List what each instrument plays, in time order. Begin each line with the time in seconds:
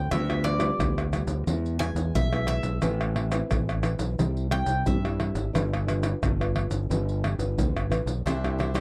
Already playing: mandolin G5
0.11 fingered electric bass D2, nylon-string guitar D3 G3 B3 F4, mandolin E5, pandeiro, tamborim, maracas, surdo
0.29 nylon-string guitar G3 B3 F4, pandeiro, tamborim, maracas, surdo
0.44 mandolin D5, pandeiro, tamborim, maracas
0.58 nylon-string guitar G3 B3 F4, pandeiro, tamborim, maracas
0.79 fingered electric bass D2, nylon-string guitar D3, pandeiro, tamborim, maracas, surdo
0.98 pandeiro, tamborim, maracas
1.13 nylon-string guitar G3 B3 F4, pandeiro, tamborim, maracas
1.27 fingered electric bass D2, pandeiro, maracas, surdo
1.47 fingered electric bass E2, nylon-string guitar E3 G#3 B3 E4, pandeiro, maracas, surdo
1.66 pandeiro, maracas
1.79 nylon-string guitar G#3 B3 E4, mandolin G#5, pandeiro, tamborim, maracas
1.95 fingered electric bass E2, pandeiro, maracas, surdo
2.15 fingered electric bass B1, nylon-string guitar B2, mandolin E5, pandeiro, maracas, surdo
2.32 nylon-string guitar G#3 B3 E4, pandeiro, tamborim, maracas
2.47 mandolin E5, pandeiro, tamborim
2.63 fingered electric bass B1, pandeiro, maracas, surdo
2.82 fingered electric bass A1, nylon-string guitar A3 C4 E4 B4, pandeiro, tamborim, maracas, surdo
3.01 pandeiro, tamborim, maracas, surdo
3.16 pandeiro, tamborim
3.30 nylon-string guitar C4 E4 B4, pandeiro, tamborim, maracas
3.50 fingered electric bass A1, nylon-string guitar E3, pandeiro, tamborim, maracas, surdo
3.69 pandeiro, tamborim, maracas
3.83 nylon-string guitar C4 E4 B4, pandeiro, tamborim, maracas
3.99 fingered electric bass B1, pandeiro, maracas, surdo
4.18 fingered electric bass C2, nylon-string guitar C3 G3 C4 E4, pandeiro, maracas, surdo
4.37 pandeiro, maracas
4.50 nylon-string guitar G3 C4 E4, mandolin G5, pandeiro, tamborim
4.66 fingered electric bass C2, pandeiro, maracas, surdo
4.86 fingered electric bass G2, nylon-string guitar G3 C4 E4, mandolin E5, pandeiro, maracas, surdo
5.05 nylon-string guitar G3 C4 E4, pandeiro, tamborim, maracas
5.20 pandeiro, tamborim
5.35 fingered electric bass G#1, pandeiro, maracas, surdo
5.53 fingered electric bass G1, nylon-string guitar G3 D4 F4 B4, pandeiro, tamborim, maracas, surdo
5.73 pandeiro, tamborim, maracas, surdo
5.86 nylon-string guitar D4 F4 B4, pandeiro, tamborim, maracas
6.03 pandeiro, tamborim, maracas
6.22 fingered electric bass G1, nylon-string guitar D3, pandeiro, tamborim, maracas, surdo
6.39 nylon-string guitar D4 F4 B4, pandeiro, tamborim, maracas
6.56 pandeiro, tamborim
6.70 fingered electric bass G1, pandeiro, maracas, surdo
6.89 fingered electric bass G1, nylon-string guitar G3 D4 F4 B4, pandeiro, maracas, surdo
7.09 pandeiro, maracas
7.24 pandeiro, tamborim
7.38 fingered electric bass G1, nylon-string guitar D4 F4 B4, pandeiro, maracas, surdo
7.58 fingered electric bass D2, nylon-string guitar D3, pandeiro, maracas, surdo
7.76 fingered electric bass G1, pandeiro, tamborim, maracas
7.90 fingered electric bass A1, nylon-string guitar D4 F4 B4, pandeiro, tamborim, maracas
8.06 fingered electric bass B1, pandeiro, maracas, surdo
8.26 fingered electric bass C2, nylon-string guitar C3 G3 D4 E4, cavaquinho D4 G4 C5 E5, pandeiro, tamborim, maracas, surdo
8.44 nylon-string guitar G3 D4 E4, pandeiro, tamborim, maracas, surdo
8.58 cavaquinho D4 G4 C5 E5, pandeiro, tamborim
8.74 nylon-string guitar G3 D4 E4, cavaquinho D4 G4 C5 E5, pandeiro, tamborim, maracas